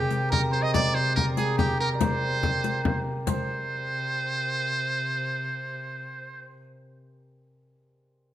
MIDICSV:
0, 0, Header, 1, 6, 480
1, 0, Start_track
1, 0, Tempo, 421941
1, 844, Time_signature, 3, 2, 24, 8
1, 9488, End_track
2, 0, Start_track
2, 0, Title_t, "Hammered dulcimer"
2, 0, Program_c, 0, 15
2, 0, Note_on_c, 0, 67, 79
2, 0, Note_on_c, 0, 70, 83
2, 0, Note_on_c, 0, 72, 83
2, 0, Note_on_c, 0, 74, 83
2, 334, Note_off_c, 0, 70, 0
2, 338, Note_on_c, 0, 70, 82
2, 576, Note_off_c, 0, 72, 0
2, 581, Note_on_c, 0, 72, 88
2, 697, Note_on_c, 0, 75, 91
2, 765, Note_off_c, 0, 74, 0
2, 846, Note_on_c, 0, 74, 88
2, 915, Note_off_c, 0, 75, 0
2, 1072, Note_off_c, 0, 72, 0
2, 1077, Note_on_c, 0, 72, 84
2, 1254, Note_off_c, 0, 72, 0
2, 1259, Note_on_c, 0, 72, 60
2, 1325, Note_off_c, 0, 70, 0
2, 1330, Note_on_c, 0, 70, 80
2, 1570, Note_on_c, 0, 68, 72
2, 1638, Note_off_c, 0, 67, 0
2, 1795, Note_on_c, 0, 67, 78
2, 1864, Note_off_c, 0, 68, 0
2, 2044, Note_off_c, 0, 70, 0
2, 2049, Note_on_c, 0, 70, 80
2, 2211, Note_off_c, 0, 74, 0
2, 2215, Note_on_c, 0, 74, 60
2, 2275, Note_off_c, 0, 72, 0
2, 2280, Note_on_c, 0, 72, 73
2, 3718, Note_off_c, 0, 72, 0
2, 3722, Note_on_c, 0, 72, 97
2, 5016, Note_off_c, 0, 74, 0
2, 5267, Note_off_c, 0, 70, 0
2, 5365, Note_off_c, 0, 67, 0
2, 8113, Note_off_c, 0, 72, 0
2, 9488, End_track
3, 0, Start_track
3, 0, Title_t, "Muted trumpet"
3, 0, Program_c, 1, 59
3, 0, Note_on_c, 1, 67, 98
3, 324, Note_off_c, 1, 67, 0
3, 359, Note_on_c, 1, 70, 104
3, 468, Note_off_c, 1, 70, 0
3, 596, Note_on_c, 1, 72, 96
3, 707, Note_on_c, 1, 75, 94
3, 724, Note_off_c, 1, 72, 0
3, 827, Note_off_c, 1, 75, 0
3, 834, Note_on_c, 1, 74, 111
3, 1075, Note_on_c, 1, 72, 101
3, 1092, Note_off_c, 1, 74, 0
3, 1311, Note_off_c, 1, 72, 0
3, 1318, Note_on_c, 1, 70, 93
3, 1427, Note_off_c, 1, 70, 0
3, 1559, Note_on_c, 1, 68, 88
3, 1785, Note_off_c, 1, 68, 0
3, 1794, Note_on_c, 1, 67, 92
3, 2023, Note_off_c, 1, 67, 0
3, 2049, Note_on_c, 1, 70, 94
3, 2156, Note_off_c, 1, 70, 0
3, 2274, Note_on_c, 1, 72, 97
3, 3435, Note_off_c, 1, 72, 0
3, 3726, Note_on_c, 1, 72, 98
3, 7469, Note_off_c, 1, 72, 0
3, 9488, End_track
4, 0, Start_track
4, 0, Title_t, "Viola da gamba"
4, 0, Program_c, 2, 42
4, 0, Note_on_c, 2, 48, 72
4, 3718, Note_off_c, 2, 48, 0
4, 3725, Note_on_c, 2, 48, 73
4, 7516, Note_off_c, 2, 48, 0
4, 9488, End_track
5, 0, Start_track
5, 0, Title_t, "Frame drum"
5, 368, Note_on_c, 9, 64, 89
5, 482, Note_off_c, 9, 64, 0
5, 849, Note_on_c, 9, 64, 90
5, 963, Note_off_c, 9, 64, 0
5, 1335, Note_on_c, 9, 64, 85
5, 1449, Note_off_c, 9, 64, 0
5, 1806, Note_on_c, 9, 64, 92
5, 1920, Note_off_c, 9, 64, 0
5, 2289, Note_on_c, 9, 64, 93
5, 2402, Note_off_c, 9, 64, 0
5, 2766, Note_on_c, 9, 64, 90
5, 2880, Note_off_c, 9, 64, 0
5, 3244, Note_on_c, 9, 64, 99
5, 3358, Note_off_c, 9, 64, 0
5, 3722, Note_on_c, 9, 64, 83
5, 3836, Note_off_c, 9, 64, 0
5, 9488, End_track
6, 0, Start_track
6, 0, Title_t, "Riq"
6, 120, Note_on_c, 9, 54, 51
6, 234, Note_off_c, 9, 54, 0
6, 362, Note_on_c, 9, 54, 23
6, 476, Note_off_c, 9, 54, 0
6, 847, Note_on_c, 9, 54, 78
6, 961, Note_off_c, 9, 54, 0
6, 1561, Note_on_c, 9, 54, 62
6, 1675, Note_off_c, 9, 54, 0
6, 1806, Note_on_c, 9, 54, 25
6, 1920, Note_off_c, 9, 54, 0
6, 2281, Note_on_c, 9, 54, 84
6, 2395, Note_off_c, 9, 54, 0
6, 2767, Note_on_c, 9, 54, 26
6, 2881, Note_off_c, 9, 54, 0
6, 3005, Note_on_c, 9, 54, 62
6, 3119, Note_off_c, 9, 54, 0
6, 3720, Note_on_c, 9, 54, 92
6, 3834, Note_off_c, 9, 54, 0
6, 9488, End_track
0, 0, End_of_file